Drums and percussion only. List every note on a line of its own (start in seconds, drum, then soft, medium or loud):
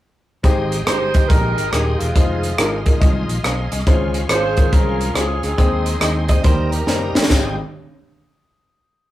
0.44 kick medium
0.44 closed hi-hat medium
0.72 closed hi-hat medium
0.87 cross-stick medium
0.87 closed hi-hat medium
1.14 kick medium
1.14 closed hi-hat medium
1.30 kick medium
1.30 closed hi-hat medium
1.58 closed hi-hat medium
1.73 cross-stick medium
1.73 closed hi-hat medium
2.00 closed hi-hat medium
2.16 kick medium
2.16 closed hi-hat medium
2.43 closed hi-hat medium
2.58 cross-stick loud
2.58 closed hi-hat medium
2.86 kick medium
2.86 closed hi-hat medium
3.02 kick loud
3.02 closed hi-hat medium
3.29 closed hi-hat medium
3.44 cross-stick medium
3.44 closed hi-hat medium
3.72 cross-stick soft
3.72 closed hi-hat medium
3.80 cross-stick soft
3.87 kick medium
3.87 closed hi-hat medium
4.14 closed hi-hat medium
4.29 cross-stick medium
4.29 closed hi-hat medium
4.57 kick medium
4.57 closed hi-hat medium
4.73 kick medium
4.73 closed hi-hat medium
5.01 closed hi-hat medium
5.15 cross-stick medium
5.15 closed hi-hat medium
5.43 cross-stick soft
5.43 closed hi-hat medium
5.58 kick medium
5.58 closed hi-hat medium
5.86 closed hi-hat medium
6.01 cross-stick medium
6.01 closed hi-hat medium
6.29 kick medium
6.29 closed hi-hat medium
6.44 kick loud
6.44 closed hi-hat medium
6.72 closed hi-hat medium
6.87 snare soft
7.15 snare medium
7.23 snare medium
7.30 kick medium
7.30 snare medium
7.30 crash medium